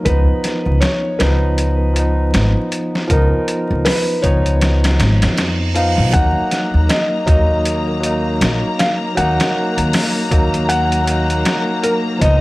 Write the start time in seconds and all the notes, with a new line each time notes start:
0.03 C#2 F3 B3 B4, kick, closed hi-hat
0.09 D#4
0.44 snare, closed hi-hat
0.66 C#2
0.81 C#5, snare, closed hi-hat
1.19 C#2 F3 B3 D#4 B4, snare, closed hi-hat
1.58 closed hi-hat
1.93 F3 B3, closed hi-hat
1.99 D#4
2.34 G#1, snare, closed hi-hat
2.72 closed hi-hat
2.95 snare
3.07 C#2 F3 B3 A#4, kick, closed hi-hat
3.13 D#4
3.48 closed hi-hat
3.71 C#2
3.85 B4, snare, open hi-hat
4.22 C#2 F3 B3 D#4 C#5, kick, closed hi-hat
4.46 closed hi-hat
4.61 snare, closed hi-hat, reverse cymbal
4.84 snare, closed hi-hat
4.99 G#1, snare, closed hi-hat
5.22 F2, snare, closed hi-hat
5.38 snare, closed hi-hat
5.74 F3 B3 D#4 F5, closed hi-hat
5.98 B1
6.11 D#2 F#3 A#3 F#5 A#5, kick, closed hi-hat
6.17 D#4
6.51 snare, closed hi-hat
6.74 D#2
6.89 D#5, snare, closed hi-hat
7.26 D#2 F#3 A#3 D#4 D#5, kick, closed hi-hat
7.65 closed hi-hat
8.00 F#3 A#3, closed hi-hat
8.06 D#4
8.41 A#1, snare, closed hi-hat
8.79 F5, snare, closed hi-hat
9.15 D#2 F#3 A#3 F#5, closed hi-hat
9.21 D#4
9.40 snare, closed hi-hat
9.78 D#2, closed hi-hat
9.93 snare, open hi-hat
10.30 D#2 F#3 A#3 D#4, kick, closed hi-hat
10.54 closed hi-hat
10.69 F#5, closed hi-hat
10.92 closed hi-hat
11.05 F#3 A#3, closed hi-hat
11.11 D#4
11.30 closed hi-hat
11.45 snare, closed hi-hat
11.83 A#4, closed hi-hat
12.19 C#2 F3 B3 D#5, kick, closed hi-hat
12.25 D#4